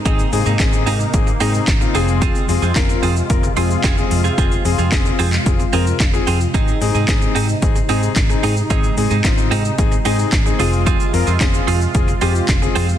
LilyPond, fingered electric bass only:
\new Staff \with { instrumentName = "Fingered electric bass" } { \clef bass \time 4/4 \key aes \major \tempo 4 = 111 aes,,8 aes,16 aes,16 aes,,8 aes,8 aes,,8 aes,8 aes,,8 f,,8~ | f,,8 f,16 f,16 f,,8 f,8 f,,8 f,8 f,,8 f,8 | f,,8 f,16 f,16 f,,8 f,8 f,,8 f,8 f,,8 f,8 | aes,,8 aes,16 aes,16 aes,,8 aes,8 aes,,8 aes,8 aes,,8 aes,8 |
aes,,8 aes,16 aes,16 aes,,8 aes,8 aes,,8 aes,8 aes,,8 f,,8~ | f,,8 f,16 f,16 f,,8 f,8 f,,8 f,8 f,,8 f,8 | }